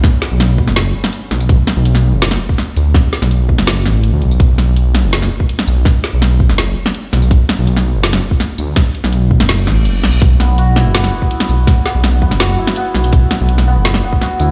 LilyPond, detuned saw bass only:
\new Staff \with { instrumentName = "Detuned saw bass" } { \clef bass \time 4/4 \key b \minor \tempo 4 = 165 r8. b,,4 fis,,8. r4 b,,8~ | b,,16 r8 b,,4 fis,,8. r4 d,8 | r8. b,,4 fis,,8. a,,8. d,16 b,,8 | b,,4.~ b,,16 fis,,8. r4 b,,8 |
r8. b,,4 fis,,8. r4 b,,8~ | b,,16 r8 b,,4 fis,,8. r4 d,8 | r8. b,,4 fis,,8. a,,8 fis,,8 b,,8 | b,,4.~ b,,16 fis,,8. r4 b,,8 |
r8. b,,4 fis,,8. r4 b,,8~ | b,,16 r8 b,,4 fis,,8. r4 d,8 | }